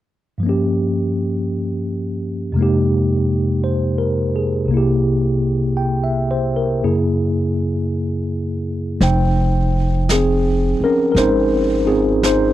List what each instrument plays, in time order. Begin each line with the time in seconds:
0.38 tine electric piano G2 F3
0.43 tine electric piano A#3 C#4
0.49 tine electric piano G4
2.52 tine electric piano F2 C3
2.56 tine electric piano G#3 A#3
2.61 tine electric piano D#4 G4
3.64 tine electric piano C5
3.98 tine electric piano A#4
4.36 tine electric piano G#4
4.66 tine electric piano C2 C3
4.71 tine electric piano A#3 E4
4.77 tine electric piano G4
5.77 tine electric piano G5
6.04 tine electric piano E5
6.31 tine electric piano C5
6.56 tine electric piano A#4
6.83 tine electric piano F#2 C#3 A#3 E4 G#4
9.01 upright bass F1, tine electric piano F3 D#4 C5 G5, brush sweep, snare
10.09 tine electric piano C4 G#4, brush sweep, snare, hi-hat pedal
10.80 tine electric piano A#4, muted upright bass stroke
10.85 tine electric piano C#4
11.12 upright bass G#1, tine electric piano A#4
11.16 tine electric piano D#4 C5, brush sweep, snare
11.86 tine electric piano C4 D#4 F4 G#4
12.23 tine electric piano D#4 C5, brush sweep, snare, hi-hat pedal